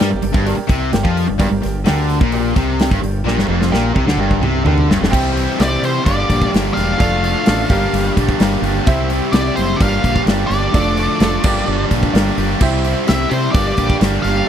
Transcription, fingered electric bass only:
0.01 G2
0.14 G1
0.23 G1
0.35 G1
0.69 C2
0.93 G1
1.05 F2
1.30 G1
1.40 G1
1.51 G1
1.65 G1
1.88 D2
2.21 A#1
2.57 C2
2.91 G1
3.03 G1
3.25 A#1
3.38 G1
3.48 F1
3.73 A#1
3.96 C2
4.06 D2
4.16 G1
4.41 C2
4.65 D2
4.89 G1
5.01 F1
5.13 C2
5.60 C2
5.82 C3
6.06 G1
6.30 A#1
6.54 G1
6.77 E1
7.01 F1
7.48 A1
7.70 G1
7.93 G1
8.17 A#1
8.40 G1
8.62 G1
8.87 C2
9.33 C2
9.57 F#1
9.81 G1
10.04 A#1
10.26 G1
10.50 G1
10.74 F1
11.20 F1
11.44 G1
11.68 G1
11.91 A#1
12.13 G1
12.37 G1
12.61 C2
13.09 C2
13.31 C3
13.54 G1
13.78 A#1
14.01 G1
14.24 G1

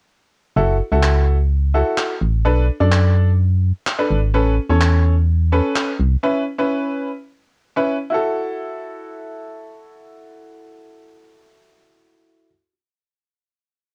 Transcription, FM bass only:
0.56 F#1
0.92 C#2
2.21 A1
2.45 B1
2.81 F#2
4.10 G#1
4.34 A1
4.69 E2
5.99 C2

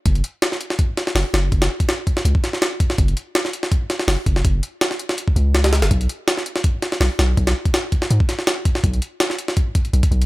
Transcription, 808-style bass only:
0.06 F#1
1.15 F#1
1.34 F#1
1.52 F#1
2.25 C#2
2.98 F#1
4.08 F#1
4.26 F#1
4.45 F#1
5.36 C#2
5.82 F#1
5.91 B1
7.01 B1
7.19 B1
7.37 B1
8.11 G#2
8.84 B1
9.93 B1
10.11 B1

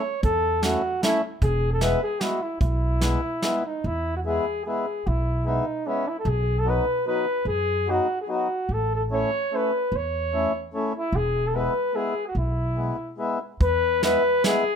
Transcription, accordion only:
0.62 A3 C#4 E4
1.02 A3 C#4 E4
1.80 G#3 B3 E4
2.21 G#3 B3 E4
3.01 G#3 B3 E4
3.42 G#3 B3 E4
4.25 G#3 B3 E4
4.66 G#3 B3 E4
5.45 G#3 B3 E4
5.86 G#3 B3 E4
6.65 F#3 B3 D#4
7.06 F#3 B3 D#4
7.87 F#3 B3 D#4
8.28 F#3 B3 D#4
9.10 A3 C#4 E4
9.52 A3 C#4 E4
10.33 A3 C#4 E4
10.74 A3 C#4 E4
11.54 G#3 B3 E4
11.94 G#3 B3 E4
12.76 G#3 B3 E4
13.18 G#3 B3 E4
14.02 G#3 B3 E4
14.44 G#3 B3 E4

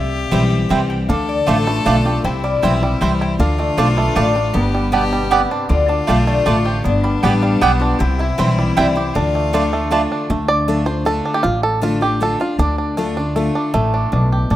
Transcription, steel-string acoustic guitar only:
Already playing: C3
0.31 E3 G3 C4 E4
0.69 E3 G3 C4 E4
1.10 D3
1.48 D3 A3 D4 F4
1.67 D4 F4
1.86 D3 A3 D4 F4
2.05 D4 F4
2.25 C3
2.63 E3 G3 C4 E4
2.82 C4 E4
3.01 E3 G3 C4 E4
3.40 D3
3.78 D3 A3 D4 F4
4.15 D3 A3 D4 F4
4.35 D4 F4
4.54 G2
4.92 B2
5.31 C3
5.69 D3
6.08 D3 A3 D4 F4
6.46 D3 A3 D4 F4
6.85 G2
7.23 G3 B3 D4 G4
7.61 G3 B3 D4 G4
8.00 C3
8.38 E3 G3 C4 E4
8.77 E3 G3 C4 E4
8.96 C4 E4
9.15 D3
9.53 D3 A3 D4 F4
9.91 D3 A3 D4 F4
10.30 D3
10.68 D3 A3 D4 F4
10.87 D4 F4
11.05 D3 A3 D4 F4
11.44 A2
11.81 D3 A3 D4 F4
12.01 D4 F4
12.20 D3 A3 D4 F4
12.40 D4 F4
12.59 D3
12.97 D3 A3 D4 F4
13.17 D4 F4
13.36 D3 A3 D4 F4
13.74 A2
14.12 B2
14.50 A2

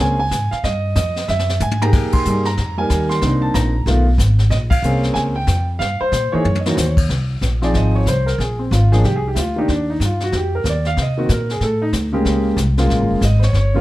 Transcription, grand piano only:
Already playing: A#3 C4 C#4 G#4
0.00 G#5
0.19 G#5
0.51 F5
0.64 D#5
0.96 D#5
1.28 E5
1.62 G#5
1.82 A#3 D#4 G4 G#4 A#5
2.13 C6
2.26 G3 A#3 D#4 G#4
2.46 A#5
2.77 G3 A#3 D#4 A#4 G#5
3.09 C6
3.23 A#3 C4 D4 D#4
3.42 A5
3.54 A#5
3.87 D#3 A3 B3 F4
4.50 D#5
4.70 F5
4.84 A#3 C4 C#4 G#4
5.14 G#5
5.36 G5
5.79 F5
6.01 C5
6.32 E3 A#3 D#4 G#4 C#5
6.60 D#5
6.66 E3 A#3 D#4 F#4 C#5
6.75 C5
6.86 C#5
7.62 F3 C4 D#4 G#4 D5
7.76 D#5
7.95 C#5
8.08 C5
8.26 A#4
8.40 G#4
8.59 C4
8.72 F4
8.92 F3 A#3 D4 G#4
9.04 G4
9.16 G#4
9.28 G4
9.35 E4 F4
9.56 D#3 A#3 D4 D#4 G4
9.70 D4
9.90 D#4
10.05 F4
10.24 F#4
10.37 G4
10.55 A#4
10.69 D5
10.87 F5
11.02 D#5
11.17 D#3 A#3 C4 F#4
11.32 A#4
11.51 G#4
11.63 A4
11.82 D#4
12.12 C#3 G#3 A#3 G4
12.77 C#3 G#3 A#3 F4
13.24 D#5
13.39 C5
13.44 C#5
13.57 C#5
13.74 C#3 G3 A#3 F4 A#4

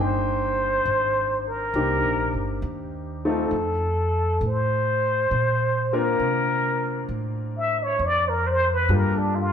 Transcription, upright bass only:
Already playing: G1
0.85 G#1
1.74 C2
2.03 A#1
2.34 G1
2.62 D#2
3.51 F2
4.41 A2
5.31 A#2
6.20 C3
7.09 A2
7.99 F2
8.89 G2

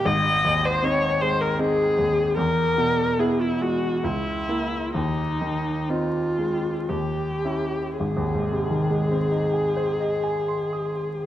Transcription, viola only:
0.06 D#5
0.65 C5
0.84 C#5
1.21 C5
1.41 A#4
1.59 G#4
2.37 A#4
3.20 G#4
3.41 E4
3.62 F#4
4.04 E4
4.94 D#4
5.89 F4
6.89 G4
7.98 G#4

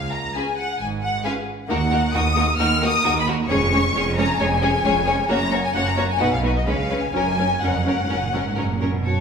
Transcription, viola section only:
0.35 C#4 F4
1.25 C#4 F4
1.69 A#3 D#4
1.92 A#3 D#4
2.14 A#3 D#4
2.36 A#3 D#4
2.59 A#3 D#4
2.82 A#3 D#4
3.04 A#3 D#4
3.28 A#3 D#4
3.50 G#3 C#4
3.72 G#3 C#4
3.95 G#3 C#4
4.17 G#3 C#4
4.39 G#3 C#4
4.62 G#3 C#4
4.84 G#3 C#4
5.07 G#3 C#4
5.29 A#3 C#4
5.52 A#3 C#4
5.74 A#3 C#4
5.97 A#3 C#4
6.20 B3 D#4
6.43 B3 D#4
6.66 G#3 C#4
6.90 G#3 C#4
7.13 F#3 C#4
7.38 F#3 C#4
7.62 F#3 C#4
7.85 F#3 C#4
8.09 F#3 C#4
8.33 F#3 C#4
8.57 F#3 C#4
8.81 F#3 C#4
9.05 F#4

